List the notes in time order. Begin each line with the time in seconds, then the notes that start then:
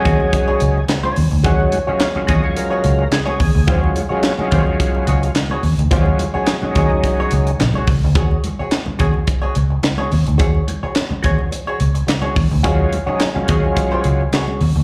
Already playing: F#3 G#3 C#4
0.00 G#4
0.05 D#2 F#4 G#4 C#5, kick, closed hi-hat, low conga
0.20 muted hollow-body jazz guitar stroke, low conga
0.33 muted hollow-body jazz guitar stroke, kick, closed hi-hat, muted conga
0.48 F#4 G#4 C#5, muted conga
0.60 C#2, muted hollow-body jazz guitar stroke, closed hi-hat
0.77 muted hollow-body jazz guitar stroke
0.88 muted hollow-body jazz guitar stroke, snare, clap, closed hi-hat, muted conga, high conga
1.03 F#4 G#4 C#5, muted conga, high conga
1.16 D#2, muted hollow-body jazz guitar stroke, open hi-hat, low conga
1.31 D2, muted hollow-body jazz guitar stroke
1.44 D#2 F#3 G#3 C#4 F#4 G#4 C#5, kick, closed hi-hat
1.60 muted conga
1.72 muted hollow-body jazz guitar stroke, closed hi-hat, high conga
1.87 F#3 G#3 C#4 F4 F#4 G#4 C#5, muted fingered electric bass stroke
2.00 muted hollow-body jazz guitar stroke, snare, clap, closed hi-hat
2.15 F#3 G#3 C#4 F4, muted hollow-body jazz guitar stroke, muted fingered electric bass stroke, muted conga, high conga
2.27 D#2 F#4 G#4 C#5 D#5, kick, closed hi-hat, low conga
2.43 C#5, muted hollow-body jazz guitar stroke, low conga
2.56 A#4, muted hollow-body jazz guitar stroke, closed hi-hat, muted conga
2.70 F#4 G#4 C#5
2.84 C#2, muted hollow-body jazz guitar stroke, closed hi-hat
2.99 muted hollow-body jazz guitar stroke
3.12 G#4, muted hollow-body jazz guitar stroke, snare, clap, closed hi-hat, muted conga, high conga
3.26 F#4 G#4 C#5, muted conga, high conga
3.40 D#2, muted hollow-body jazz guitar stroke, kick, open hi-hat, low conga
3.55 D2, muted hollow-body jazz guitar stroke
3.67 D#2 F#3 G#3 C#4 F4 F#4 G#4 C#5, kick, closed hi-hat, muted conga
3.83 muted conga
3.95 muted hollow-body jazz guitar stroke, closed hi-hat, high conga
4.09 F#3 G#3 C#4 F4 F#4 G#4 C#5, muted fingered electric bass stroke
4.23 muted hollow-body jazz guitar stroke, snare, clap, closed hi-hat, muted conga
4.38 F#3 G#3 C#4 D#4, muted fingered electric bass stroke, muted hollow-body jazz guitar stroke, muted conga, high conga
4.47 F4
4.51 D#2 F#4 G#4 C#5, kick, closed hi-hat, low conga
4.66 muted hollow-body jazz guitar stroke, low conga
4.80 kick, closed hi-hat, muted conga
4.95 muted hollow-body jazz guitar stroke, muted conga
5.07 C#2 F#4 G#4 C#5, closed hi-hat
5.21 muted hollow-body jazz guitar stroke, closed hi-hat
5.35 muted hollow-body jazz guitar stroke, snare, clap, closed hi-hat, muted conga, high conga
5.50 F#4 G#4 C#5, high conga
5.63 D#2, muted hollow-body jazz guitar stroke, open hi-hat, low conga
5.78 D2, muted hollow-body jazz guitar stroke, closed hi-hat
5.91 D#2 F#3 G#3 C#4 F4 F#4 G#4 C#5, kick, closed hi-hat, muted conga
6.06 muted conga
6.19 muted hollow-body jazz guitar stroke, closed hi-hat, high conga
6.34 F#3 G#3 C#4 F#4 G#4 C#5, muted fingered electric bass stroke
6.47 muted hollow-body jazz guitar stroke, snare, clap, closed hi-hat
6.62 F#3 G#3 C#4 D#4, muted hollow-body jazz guitar stroke, muted fingered electric bass stroke, muted conga, high conga
6.75 D#2 F#4 G#4 C#5, kick, closed hi-hat, low conga
6.90 muted hollow-body jazz guitar stroke, low conga
7.04 muted hollow-body jazz guitar stroke, kick, closed hi-hat
7.18 G#4 C#5, muted conga
7.22 F#4
7.31 C#2, muted hollow-body jazz guitar stroke, closed hi-hat
7.47 muted hollow-body jazz guitar stroke, closed hi-hat
7.60 A#1, muted hollow-body jazz guitar stroke, snare, clap, closed hi-hat, high conga
7.74 F#4 G#4 C#5, muted conga, high conga
7.87 C#2, muted hollow-body jazz guitar stroke, kick, open hi-hat, low conga
8.04 D2, muted hollow-body jazz guitar stroke
8.15 D#2 F#4 G#4 C#5, kick, closed hi-hat
8.31 muted conga
8.44 muted hollow-body jazz guitar stroke, closed hi-hat, high conga
8.59 F#4 G#4 C#5, muted fingered electric bass stroke
8.71 muted hollow-body jazz guitar stroke, snare, clap, closed hi-hat, muted conga
8.86 muted hollow-body jazz guitar stroke, muted fingered electric bass stroke, muted conga, high conga
8.99 D#2 F#4 G#4 C#5, kick, closed hi-hat, low conga
9.13 muted hollow-body jazz guitar stroke, low conga
9.27 muted hollow-body jazz guitar stroke, kick, closed hi-hat, muted conga
9.41 F#4 G#4 C#5, muted conga
9.55 C#2, muted hollow-body jazz guitar stroke, closed hi-hat
9.70 muted hollow-body jazz guitar stroke
9.83 muted hollow-body jazz guitar stroke, snare, clap, closed hi-hat, muted conga, high conga
9.98 F#4 G#4 C#5, muted conga, high conga
10.11 D#2, muted hollow-body jazz guitar stroke, open hi-hat, low conga
10.26 D2, muted hollow-body jazz guitar stroke, closed hi-hat
10.38 D#2 F#4 G#4 C#5, kick, closed hi-hat
10.55 muted conga
10.68 muted hollow-body jazz guitar stroke, closed hi-hat, high conga
10.83 F#4 G#4 C#5, muted fingered electric bass stroke
10.95 muted hollow-body jazz guitar stroke, snare, clap, closed hi-hat
11.10 muted hollow-body jazz guitar stroke, muted fingered electric bass stroke, muted conga, high conga
11.23 D#2 F#4 G#4 C#5, kick, closed hi-hat, low conga
11.38 muted hollow-body jazz guitar stroke, low conga
11.51 muted hollow-body jazz guitar stroke, closed hi-hat, muted conga
11.67 F#4 G#4 C#5, muted conga
11.80 C#2, muted hollow-body jazz guitar stroke, closed hi-hat
11.95 muted hollow-body jazz guitar stroke, closed hi-hat
12.07 muted hollow-body jazz guitar stroke, snare, clap, closed hi-hat, muted conga, high conga
12.22 F#4 G#4 C#5, muted conga, high conga
12.36 D#2, muted hollow-body jazz guitar stroke, kick, open hi-hat, low conga
12.51 D2, muted hollow-body jazz guitar stroke
12.63 D#2 F#3 G#3 C#4 F4 F#4 G#4 C#5, kick, closed hi-hat, muted conga
12.80 muted conga
12.92 muted hollow-body jazz guitar stroke, closed hi-hat, high conga
13.06 F#3 G#3 C#4 D#4 F#4 G#4 C#5, muted fingered electric bass stroke
13.20 muted hollow-body jazz guitar stroke, snare, clap, closed hi-hat, muted conga
13.34 F#3 G#3 C#4 F4, muted fingered electric bass stroke, muted hollow-body jazz guitar stroke, muted conga, high conga
13.48 D#2 F#4 G#4 C#5, kick, closed hi-hat, low conga
13.63 muted hollow-body jazz guitar stroke, low conga
13.77 muted hollow-body jazz guitar stroke, kick, closed hi-hat, muted conga
13.91 F#4 G#4 C#5, muted conga
14.04 C#2, muted hollow-body jazz guitar stroke, closed hi-hat
14.21 muted hollow-body jazz guitar stroke
14.32 F#4 G#4 C#5, snare, clap, closed hi-hat, muted conga, high conga
14.47 muted conga, high conga
14.61 D#2, muted hollow-body jazz guitar stroke, open hi-hat, low conga
14.76 D2, muted hollow-body jazz guitar stroke